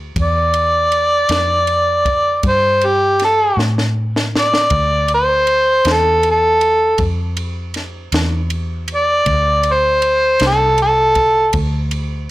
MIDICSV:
0, 0, Header, 1, 4, 480
1, 0, Start_track
1, 0, Tempo, 759494
1, 105, Time_signature, 12, 3, 24, 8
1, 7776, End_track
2, 0, Start_track
2, 0, Title_t, "Harmonica"
2, 0, Program_c, 0, 22
2, 132, Note_on_c, 0, 74, 97
2, 1532, Note_off_c, 0, 74, 0
2, 1567, Note_on_c, 0, 72, 89
2, 1806, Note_on_c, 0, 67, 81
2, 1815, Note_off_c, 0, 72, 0
2, 2027, Note_off_c, 0, 67, 0
2, 2048, Note_on_c, 0, 69, 82
2, 2269, Note_off_c, 0, 69, 0
2, 2775, Note_on_c, 0, 74, 90
2, 3224, Note_off_c, 0, 74, 0
2, 3249, Note_on_c, 0, 72, 83
2, 3739, Note_on_c, 0, 69, 89
2, 3749, Note_off_c, 0, 72, 0
2, 3954, Note_off_c, 0, 69, 0
2, 3986, Note_on_c, 0, 69, 96
2, 4429, Note_off_c, 0, 69, 0
2, 5656, Note_on_c, 0, 74, 88
2, 6141, Note_on_c, 0, 72, 88
2, 6150, Note_off_c, 0, 74, 0
2, 6587, Note_off_c, 0, 72, 0
2, 6614, Note_on_c, 0, 69, 102
2, 6831, Note_off_c, 0, 69, 0
2, 6839, Note_on_c, 0, 69, 98
2, 7296, Note_off_c, 0, 69, 0
2, 7776, End_track
3, 0, Start_track
3, 0, Title_t, "Fingered electric bass"
3, 0, Program_c, 1, 33
3, 0, Note_on_c, 1, 38, 90
3, 78, Note_off_c, 1, 38, 0
3, 101, Note_on_c, 1, 40, 82
3, 801, Note_off_c, 1, 40, 0
3, 818, Note_on_c, 1, 41, 87
3, 1519, Note_off_c, 1, 41, 0
3, 1541, Note_on_c, 1, 43, 79
3, 2240, Note_off_c, 1, 43, 0
3, 2256, Note_on_c, 1, 45, 84
3, 2957, Note_off_c, 1, 45, 0
3, 2977, Note_on_c, 1, 38, 79
3, 3677, Note_off_c, 1, 38, 0
3, 3699, Note_on_c, 1, 40, 88
3, 4398, Note_off_c, 1, 40, 0
3, 4416, Note_on_c, 1, 41, 87
3, 5116, Note_off_c, 1, 41, 0
3, 5135, Note_on_c, 1, 40, 82
3, 5836, Note_off_c, 1, 40, 0
3, 5853, Note_on_c, 1, 38, 88
3, 6555, Note_off_c, 1, 38, 0
3, 6577, Note_on_c, 1, 36, 89
3, 7277, Note_off_c, 1, 36, 0
3, 7292, Note_on_c, 1, 38, 85
3, 7776, Note_off_c, 1, 38, 0
3, 7776, End_track
4, 0, Start_track
4, 0, Title_t, "Drums"
4, 101, Note_on_c, 9, 51, 68
4, 102, Note_on_c, 9, 36, 103
4, 165, Note_off_c, 9, 36, 0
4, 165, Note_off_c, 9, 51, 0
4, 339, Note_on_c, 9, 51, 54
4, 402, Note_off_c, 9, 51, 0
4, 580, Note_on_c, 9, 51, 53
4, 643, Note_off_c, 9, 51, 0
4, 814, Note_on_c, 9, 51, 75
4, 828, Note_on_c, 9, 38, 93
4, 878, Note_off_c, 9, 51, 0
4, 891, Note_off_c, 9, 38, 0
4, 1057, Note_on_c, 9, 51, 58
4, 1120, Note_off_c, 9, 51, 0
4, 1299, Note_on_c, 9, 36, 71
4, 1300, Note_on_c, 9, 51, 55
4, 1362, Note_off_c, 9, 36, 0
4, 1363, Note_off_c, 9, 51, 0
4, 1537, Note_on_c, 9, 51, 76
4, 1539, Note_on_c, 9, 36, 94
4, 1600, Note_off_c, 9, 51, 0
4, 1602, Note_off_c, 9, 36, 0
4, 1778, Note_on_c, 9, 51, 60
4, 1842, Note_off_c, 9, 51, 0
4, 2019, Note_on_c, 9, 51, 58
4, 2032, Note_on_c, 9, 38, 30
4, 2082, Note_off_c, 9, 51, 0
4, 2096, Note_off_c, 9, 38, 0
4, 2270, Note_on_c, 9, 38, 57
4, 2334, Note_off_c, 9, 38, 0
4, 2390, Note_on_c, 9, 38, 54
4, 2454, Note_off_c, 9, 38, 0
4, 2631, Note_on_c, 9, 38, 73
4, 2695, Note_off_c, 9, 38, 0
4, 2752, Note_on_c, 9, 38, 90
4, 2816, Note_off_c, 9, 38, 0
4, 2867, Note_on_c, 9, 38, 83
4, 2930, Note_off_c, 9, 38, 0
4, 2971, Note_on_c, 9, 51, 79
4, 2976, Note_on_c, 9, 36, 96
4, 3034, Note_off_c, 9, 51, 0
4, 3039, Note_off_c, 9, 36, 0
4, 3213, Note_on_c, 9, 51, 55
4, 3276, Note_off_c, 9, 51, 0
4, 3456, Note_on_c, 9, 51, 57
4, 3519, Note_off_c, 9, 51, 0
4, 3696, Note_on_c, 9, 51, 74
4, 3709, Note_on_c, 9, 38, 105
4, 3759, Note_off_c, 9, 51, 0
4, 3772, Note_off_c, 9, 38, 0
4, 3938, Note_on_c, 9, 51, 56
4, 4002, Note_off_c, 9, 51, 0
4, 4178, Note_on_c, 9, 51, 54
4, 4241, Note_off_c, 9, 51, 0
4, 4412, Note_on_c, 9, 51, 67
4, 4417, Note_on_c, 9, 36, 97
4, 4475, Note_off_c, 9, 51, 0
4, 4480, Note_off_c, 9, 36, 0
4, 4656, Note_on_c, 9, 51, 60
4, 4719, Note_off_c, 9, 51, 0
4, 4892, Note_on_c, 9, 51, 56
4, 4905, Note_on_c, 9, 38, 32
4, 4955, Note_off_c, 9, 51, 0
4, 4968, Note_off_c, 9, 38, 0
4, 5133, Note_on_c, 9, 51, 73
4, 5146, Note_on_c, 9, 38, 110
4, 5196, Note_off_c, 9, 51, 0
4, 5210, Note_off_c, 9, 38, 0
4, 5373, Note_on_c, 9, 51, 55
4, 5436, Note_off_c, 9, 51, 0
4, 5611, Note_on_c, 9, 51, 58
4, 5674, Note_off_c, 9, 51, 0
4, 5852, Note_on_c, 9, 51, 77
4, 5855, Note_on_c, 9, 36, 98
4, 5916, Note_off_c, 9, 51, 0
4, 5919, Note_off_c, 9, 36, 0
4, 6088, Note_on_c, 9, 51, 58
4, 6152, Note_off_c, 9, 51, 0
4, 6332, Note_on_c, 9, 51, 58
4, 6395, Note_off_c, 9, 51, 0
4, 6570, Note_on_c, 9, 51, 80
4, 6583, Note_on_c, 9, 38, 100
4, 6633, Note_off_c, 9, 51, 0
4, 6646, Note_off_c, 9, 38, 0
4, 6812, Note_on_c, 9, 51, 64
4, 6875, Note_off_c, 9, 51, 0
4, 7048, Note_on_c, 9, 51, 62
4, 7053, Note_on_c, 9, 36, 70
4, 7111, Note_off_c, 9, 51, 0
4, 7116, Note_off_c, 9, 36, 0
4, 7286, Note_on_c, 9, 51, 83
4, 7293, Note_on_c, 9, 36, 101
4, 7349, Note_off_c, 9, 51, 0
4, 7356, Note_off_c, 9, 36, 0
4, 7528, Note_on_c, 9, 51, 61
4, 7591, Note_off_c, 9, 51, 0
4, 7776, End_track
0, 0, End_of_file